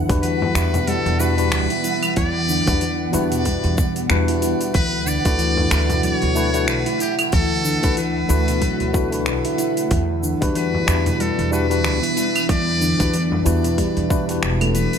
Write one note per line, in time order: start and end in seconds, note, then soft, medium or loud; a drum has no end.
0.00 4.71 E3 medium
0.00 4.71 G3 medium
0.00 4.71 B3 medium
0.00 9.86 F#5 medium
0.09 0.49 E2 medium
0.09 0.52 G3 medium
0.09 0.52 D4 medium
0.09 0.52 E4 medium
0.09 0.52 F#4 medium
0.09 0.53 B4 loud
0.09 kick loud
0.09 open hi-hat soft
0.09 shaker soft
0.23 0.41 E3 medium
0.23 0.89 B4 medium
0.23 open hi-hat medium
0.23 shaker soft
0.42 frame drum medium
0.55 0.98 E2 medium
0.55 1.16 G3 medium
0.55 1.16 D4 medium
0.55 0.72 E4 medium
0.55 1.17 E4 medium
0.55 1.17 F#4 medium
0.55 1.17 B4 medium
0.55 finger snap medium
0.55 open hi-hat soft
0.55 shaker medium
0.74 0.82 B2 medium
0.74 open hi-hat soft
0.74 frame drum medium
0.74 shaker soft
0.87 1.04 G3 loud
0.87 1.21 A4 loud
0.87 open hi-hat medium
0.87 shaker soft
1.06 1.52 E2 medium
1.06 1.14 B2 medium
1.06 open hi-hat soft
1.19 1.34 G3 medium
1.19 1.34 D4 medium
1.19 1.34 E4 medium
1.19 1.34 F#4 medium
1.19 2.16 B4 loud
1.19 1.34 B4 loud
1.19 shaker medium
1.37 1.66 G3 medium
1.37 1.67 D4 medium
1.37 1.67 E4 medium
1.37 1.67 F#4 medium
1.37 1.67 B4 medium
1.37 open hi-hat soft
1.37 shaker soft
1.52 1.65 D2 medium
1.52 finger snap medium
1.52 shaker soft
1.70 1.78 E4 medium
1.70 open hi-hat medium
1.84 2.15 E4 medium
1.84 open hi-hat soft
1.84 shaker medium
2.03 open hi-hat soft
2.03 claves medium
2.03 shaker soft
2.16 2.59 E2 loud
2.16 2.34 E3 medium
2.16 3.10 D5 loud
2.16 kick loud
2.16 open hi-hat medium
2.16 shaker soft
2.49 2.66 D3 medium
2.49 shaker medium
2.66 3.07 E2 medium
2.66 2.83 G3 medium
2.66 2.83 D4 medium
2.66 2.83 E4 medium
2.66 2.84 F#4 medium
2.66 2.84 B4 medium
2.66 kick loud
2.66 open hi-hat soft
2.66 shaker soft
2.81 2.99 E3 medium
2.81 open hi-hat medium
2.81 shaker soft
3.12 3.56 E2 loud
3.12 3.74 G3 medium
3.12 3.74 D4 medium
3.12 3.30 E4 medium
3.12 3.75 E4 medium
3.12 3.75 F#4 medium
3.12 3.75 B4 medium
3.12 open hi-hat soft
3.12 shaker medium
3.32 3.40 B2 medium
3.32 open hi-hat soft
3.32 shaker soft
3.45 3.62 G3 medium
3.45 kick medium
3.45 open hi-hat medium
3.45 shaker soft
3.64 4.04 E2 medium
3.64 3.72 B2 medium
3.64 open hi-hat soft
3.78 kick loud
3.78 shaker medium
3.96 open hi-hat soft
3.96 shaker soft
4.09 4.53 E2 medium
4.09 4.72 G3 loud
4.09 4.73 D4 medium
4.09 4.73 E4 medium
4.09 4.73 F#4 medium
4.09 4.73 B4 loud
4.09 finger snap medium
4.09 shaker soft
4.28 4.37 E4 medium
4.28 open hi-hat medium
4.42 4.73 E4 medium
4.42 open hi-hat soft
4.42 shaker medium
4.61 open hi-hat soft
4.61 shaker soft
4.74 5.17 D2 loud
4.74 9.87 D3 medium
4.74 4.92 E3 medium
4.74 9.87 A3 medium
4.74 9.87 E4 medium
4.74 5.09 B4 loud
4.74 kick loud
4.74 open hi-hat medium
4.74 shaker soft
5.06 5.24 D3 medium
5.06 6.06 D5 loud
5.06 shaker medium
5.25 5.65 D2 medium
5.25 5.68 A3 medium
5.25 5.68 D4 medium
5.25 5.68 E4 medium
5.25 5.68 F#4 medium
5.25 5.69 B4 loud
5.25 kick loud
5.25 open hi-hat soft
5.25 shaker soft
5.39 5.57 E3 medium
5.39 open hi-hat medium
5.39 shaker soft
5.57 frame drum medium
5.70 6.14 D2 loud
5.70 6.32 A3 medium
5.70 6.32 D4 medium
5.70 5.88 E4 medium
5.70 6.33 E4 medium
5.70 6.33 F#4 medium
5.70 6.33 B4 medium
5.70 finger snap medium
5.70 open hi-hat soft
5.70 shaker medium
5.89 5.97 B2 medium
5.89 open hi-hat soft
5.89 frame drum medium
5.89 shaker soft
6.03 6.20 F#3 medium
6.03 6.69 C#5 loud
6.03 open hi-hat medium
6.03 shaker soft
6.21 6.68 D2 medium
6.21 6.30 B2 medium
6.21 open hi-hat soft
6.35 6.50 A3 medium
6.35 6.50 D4 medium
6.35 6.50 E4 medium
6.35 6.50 F#4 medium
6.35 6.51 B4 loud
6.35 shaker medium
6.53 6.82 A3 medium
6.53 6.83 D4 medium
6.53 6.83 E4 medium
6.53 6.83 F#4 medium
6.53 6.83 B4 medium
6.53 open hi-hat soft
6.53 shaker soft
6.68 6.82 B1 medium
6.68 6.99 B4 loud
6.68 finger snap medium
6.68 shaker soft
6.86 6.94 E4 medium
6.86 open hi-hat medium
7.00 7.31 E4 medium
7.00 7.16 G4 medium
7.00 open hi-hat soft
7.00 shaker medium
7.19 open hi-hat soft
7.19 claves medium
7.19 shaker soft
7.32 7.75 D2 loud
7.32 7.50 E3 medium
7.32 7.94 A4 loud
7.32 kick loud
7.32 open hi-hat medium
7.32 shaker soft
7.65 7.82 D3 medium
7.65 shaker medium
7.82 8.23 D2 medium
7.82 7.99 A3 medium
7.82 7.99 D4 medium
7.82 7.99 E4 medium
7.82 8.00 F#4 medium
7.82 8.00 B4 loud
7.82 kick loud
7.82 open hi-hat soft
7.82 shaker soft
7.97 8.15 E3 medium
7.97 9.23 B4 loud
7.97 open hi-hat medium
7.97 shaker soft
8.28 8.72 D2 loud
8.28 8.90 A3 medium
8.28 8.90 D4 medium
8.28 8.91 E4 medium
8.28 8.46 E4 medium
8.28 8.91 F#4 medium
8.28 8.91 B4 loud
8.28 open hi-hat soft
8.28 shaker medium
8.48 8.56 B2 medium
8.48 open hi-hat soft
8.48 shaker soft
8.61 8.78 F#3 loud
8.61 kick medium
8.61 open hi-hat medium
8.61 shaker soft
8.80 9.27 D2 medium
8.80 8.88 B2 medium
8.80 open hi-hat soft
8.93 9.08 A3 medium
8.93 9.08 D4 medium
8.93 9.08 E4 medium
8.93 9.08 F#4 medium
8.93 9.09 B4 loud
8.93 kick loud
8.93 shaker medium
9.11 9.88 A3 medium
9.11 9.88 D4 medium
9.11 9.89 E4 medium
9.11 9.89 F#4 medium
9.11 9.90 B4 medium
9.11 open hi-hat soft
9.11 shaker soft
9.26 9.40 B1 medium
9.26 finger snap medium
9.26 shaker soft
9.45 9.53 E4 medium
9.45 open hi-hat medium
9.58 9.89 E4 medium
9.58 open hi-hat soft
9.58 shaker medium
9.77 open hi-hat soft
9.77 shaker soft
9.91 10.33 E2 loud
9.91 10.09 E3 medium
9.91 14.98 E3 medium
9.91 14.98 G3 medium
9.91 14.98 B3 medium
9.91 14.98 D4 medium
9.91 kick loud
9.91 open hi-hat medium
9.91 shaker soft
10.23 10.41 D3 medium
10.23 shaker medium
10.41 10.82 E2 medium
10.41 10.84 G3 loud
10.41 10.84 D4 medium
10.41 10.84 E4 medium
10.41 10.84 F#4 medium
10.41 10.85 B4 loud
10.41 kick loud
10.41 open hi-hat soft
10.41 shaker soft
10.55 10.73 E3 medium
10.55 11.22 B4 medium
10.55 open hi-hat medium
10.55 shaker soft
10.74 frame drum medium
10.86 11.30 E2 loud
10.86 11.48 G3 medium
10.86 11.48 D4 medium
10.86 11.49 E4 medium
10.86 11.05 E4 medium
10.86 11.49 F#4 medium
10.86 11.49 B4 medium
10.86 finger snap medium
10.86 open hi-hat soft
10.86 shaker medium
11.06 11.14 B2 medium
11.06 open hi-hat soft
11.06 frame drum medium
11.06 shaker soft
11.20 11.37 G3 medium
11.20 11.53 A4 medium
11.20 open hi-hat medium
11.20 shaker soft
11.38 11.84 E2 medium
11.38 11.46 B2 medium
11.38 open hi-hat soft
11.51 11.66 G3 loud
11.51 11.66 D4 medium
11.51 11.66 E4 medium
11.51 11.66 F#4 medium
11.51 11.67 B4 loud
11.51 12.45 B4 loud
11.51 shaker medium
11.70 11.99 G3 medium
11.70 11.99 D4 medium
11.70 11.99 E4 medium
11.70 11.99 F#4 medium
11.70 11.99 B4 medium
11.70 open hi-hat soft
11.70 shaker soft
11.84 11.98 D2 medium
11.84 finger snap medium
11.84 shaker soft
12.03 12.11 E4 medium
12.03 open hi-hat medium
12.17 12.48 E4 medium
12.17 open hi-hat medium
12.17 shaker medium
12.36 open hi-hat soft
12.36 claves medium
12.36 shaker soft
12.49 12.92 E2 loud
12.49 12.67 E3 medium
12.49 13.42 D5 loud
12.49 kick loud
12.49 open hi-hat medium
12.49 shaker soft
12.81 12.99 D3 medium
12.81 open hi-hat soft
12.81 shaker medium
12.99 13.40 E2 medium
12.99 13.15 G3 medium
12.99 13.15 D4 medium
12.99 13.16 E4 medium
12.99 13.16 F#4 medium
12.99 13.16 B4 medium
12.99 kick loud
12.99 open hi-hat soft
12.99 shaker soft
13.14 13.31 E3 medium
13.14 open hi-hat medium
13.14 shaker soft
13.32 frame drum medium
13.45 13.88 E2 loud
13.45 14.06 G3 medium
13.45 14.07 D4 medium
13.45 14.07 E4 medium
13.45 13.63 E4 medium
13.45 14.07 F#4 medium
13.45 14.07 B4 medium
13.45 open hi-hat soft
13.45 shaker medium
13.64 13.72 B2 medium
13.64 open hi-hat soft
13.64 shaker soft
13.78 13.95 G3 loud
13.78 kick medium
13.78 open hi-hat medium
13.78 shaker soft
13.97 14.36 E2 medium
13.97 14.04 B2 medium
13.97 open hi-hat soft
14.09 14.24 G3 medium
14.09 14.24 D4 medium
14.09 14.24 E4 medium
14.09 14.27 E4 medium
14.09 14.24 F#4 medium
14.09 14.25 B4 medium
14.09 kick loud
14.09 shaker medium
14.27 14.98 G3 medium
14.27 14.98 D4 medium
14.27 14.98 E4 medium
14.27 14.98 F#4 medium
14.27 open hi-hat soft
14.27 shaker soft
14.31 14.98 B4 medium
14.43 14.85 E1 medium
14.43 finger snap medium
14.43 shaker soft
14.61 14.69 A3 medium
14.61 open hi-hat medium
14.61 claves medium
14.74 14.92 E3 medium
14.74 14.98 B4 medium
14.74 open hi-hat medium
14.74 shaker medium
14.93 open hi-hat soft
14.93 shaker soft